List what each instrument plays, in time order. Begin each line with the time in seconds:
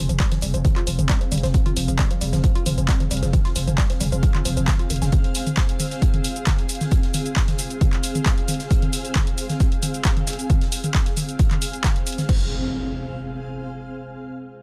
Already playing: ambient pad C4 G#4 F5, downlifter
0.09 808-style bass F1, synth arpeggio sound F3, closed hi-hat, shaker
0.20 synth arpeggio sound G3, kick, snare, clap, closed hi-hat, shaker
0.32 synth arpeggio sound F3, snare, closed hi-hat, mid tom
0.41 808-style bass F1, synth arpeggio sound G3, closed hi-hat, open hi-hat, shaker
0.54 808-style bass F1, synth arpeggio sound F3, closed hi-hat, shaker
0.65 synth arpeggio sound F3, kick, closed hi-hat, mid tom, shaker
0.76 synth arpeggio sound F4, clap, closed hi-hat
0.87 808-style bass F1, synth arpeggio sound F3, closed hi-hat, open hi-hat, shaker
0.99 808-style bass F1, synth arpeggio sound F3, closed hi-hat, mid tom, shaker
1.09 synth arpeggio sound G3, kick, snare, clap, closed hi-hat, shaker
1.21 synth arpeggio sound F3, closed hi-hat
1.32 808-style bass F1, synth arpeggio sound G3, closed hi-hat, open hi-hat, mid tom, shaker
1.38 closed hi-hat
1.43 808-style bass F1, synth arpeggio sound F3, snare, closed hi-hat, shaker
1.54 synth arpeggio sound F3, kick, closed hi-hat, shaker
1.66 synth arpeggio sound F4, closed hi-hat, mid tom
1.76 808-style bass F1, synth arpeggio sound F3, closed hi-hat, open hi-hat, shaker
1.88 808-style bass F1, synth arpeggio sound F3, closed hi-hat, shaker
1.98 synth arpeggio sound G3, kick, snare, clap, closed hi-hat, mid tom, shaker
2.11 synth arpeggio sound F3, closed hi-hat
2.21 808-style bass F1, synth arpeggio sound G3, closed hi-hat, open hi-hat, shaker
2.33 808-style bass F1, synth arpeggio sound F3, snare, closed hi-hat, mid tom, shaker
2.44 synth arpeggio sound F3, kick, closed hi-hat, shaker
2.55 synth arpeggio sound F4, closed hi-hat
2.66 808-style bass F1, synth arpeggio sound F3, closed hi-hat, open hi-hat, mid tom, shaker
2.78 808-style bass F1, synth arpeggio sound F3, closed hi-hat, shaker
2.88 synth arpeggio sound G3, kick, snare, clap, closed hi-hat, shaker
3.00 synth arpeggio sound F3, closed hi-hat, mid tom
3.11 808-style bass F1, synth arpeggio sound G3, closed hi-hat, open hi-hat, shaker
3.17 closed hi-hat
3.22 808-style bass F1, synth arpeggio sound F3, snare, closed hi-hat, shaker
3.33 synth arpeggio sound F3, kick, closed hi-hat, mid tom, shaker
3.45 synth arpeggio sound F4, snare, closed hi-hat
3.55 808-style bass F1, synth arpeggio sound F3, snare, closed hi-hat, open hi-hat, shaker
3.67 808-style bass F1, synth arpeggio sound F3, closed hi-hat, mid tom, shaker
3.78 synth arpeggio sound G3, kick, snare, clap, closed hi-hat, shaker
3.90 synth arpeggio sound F3, snare, closed hi-hat
4.00 808-style bass F1, synth arpeggio sound G3, closed hi-hat, open hi-hat, mid tom, shaker
4.12 808-style bass F1, synth arpeggio sound F3, closed hi-hat, shaker
4.23 synth arpeggio sound F3, kick, closed hi-hat, shaker
4.35 synth arpeggio sound F4, clap, closed hi-hat, mid tom
4.45 808-style bass F1, synth arpeggio sound F3, closed hi-hat, open hi-hat, shaker
4.57 808-style bass F1, synth arpeggio sound F3, closed hi-hat, shaker
4.68 synth arpeggio sound F3, kick, snare, clap, closed hi-hat, mid tom, shaker
4.79 synth arpeggio sound F4, closed hi-hat
4.90 808-style bass F1, synth arpeggio sound D#3, closed hi-hat, open hi-hat, shaker
4.96 closed hi-hat
5.02 808-style bass F1, synth arpeggio sound C#4, snare, closed hi-hat, mid tom, shaker
5.12 kick, closed hi-hat, mid tom, shaker
5.24 closed hi-hat
5.35 closed hi-hat, open hi-hat, shaker
5.47 closed hi-hat, mid tom, shaker
5.57 kick, snare, clap, closed hi-hat, shaker
5.69 closed hi-hat
5.79 closed hi-hat, open hi-hat, mid tom, shaker
5.91 snare, closed hi-hat, shaker
6.02 kick, closed hi-hat, shaker
6.14 closed hi-hat, mid tom
6.24 closed hi-hat, open hi-hat, shaker
6.36 closed hi-hat, shaker
6.46 kick, snare, clap, closed hi-hat, mid tom, shaker
6.58 closed hi-hat
6.69 closed hi-hat, open hi-hat, shaker
6.75 closed hi-hat
6.81 snare, closed hi-hat, mid tom, shaker
6.91 kick, closed hi-hat, shaker
7.03 snare, closed hi-hat
7.13 snare, closed hi-hat, open hi-hat, mid tom, shaker
7.26 closed hi-hat, shaker
7.36 kick, snare, clap, closed hi-hat, shaker
7.47 snare, closed hi-hat, mid tom
7.58 closed hi-hat, open hi-hat, shaker
7.70 closed hi-hat, shaker
7.81 kick, closed hi-hat, mid tom, shaker
7.93 clap, closed hi-hat
8.03 closed hi-hat, open hi-hat, shaker
8.15 closed hi-hat, mid tom, shaker
8.25 kick, snare, clap, closed hi-hat, shaker
8.38 closed hi-hat
8.48 closed hi-hat, open hi-hat, mid tom, shaker
8.54 closed hi-hat
8.59 snare, closed hi-hat, shaker
8.71 kick, closed hi-hat, shaker
8.82 closed hi-hat, mid tom
8.93 closed hi-hat, open hi-hat, shaker
9.05 closed hi-hat, shaker
9.15 kick, snare, clap, closed hi-hat, mid tom, shaker
9.27 closed hi-hat
9.38 closed hi-hat, open hi-hat, shaker
9.49 snare, closed hi-hat, mid tom, shaker
9.60 kick, closed hi-hat, shaker
9.72 closed hi-hat
9.83 closed hi-hat, open hi-hat, mid tom, shaker
9.94 closed hi-hat, shaker
10.04 kick, snare, clap, closed hi-hat, shaker
10.17 closed hi-hat, mid tom
10.27 snare, closed hi-hat, open hi-hat, shaker
10.33 closed hi-hat
10.39 closed hi-hat, shaker
10.50 kick, closed hi-hat, mid tom, shaker
10.61 snare, closed hi-hat
10.72 closed hi-hat, open hi-hat, shaker
10.84 closed hi-hat, mid tom, shaker
10.94 kick, snare, clap, closed hi-hat, shaker
11.06 snare, closed hi-hat
11.16 closed hi-hat, open hi-hat, mid tom, shaker
11.29 closed hi-hat, shaker
11.39 kick, closed hi-hat, shaker
11.51 clap, closed hi-hat, mid tom
11.62 closed hi-hat, open hi-hat, shaker
11.73 closed hi-hat, shaker
11.84 kick, snare, clap, closed hi-hat, mid tom, shaker
11.96 closed hi-hat
12.07 closed hi-hat, open hi-hat, shaker
12.12 closed hi-hat
12.18 snare, closed hi-hat, mid tom, shaker
12.29 synth arpeggio sound F3, ambient pad C4, kick, crash, impact
12.36 ambient pad G#4
12.43 ambient pad F5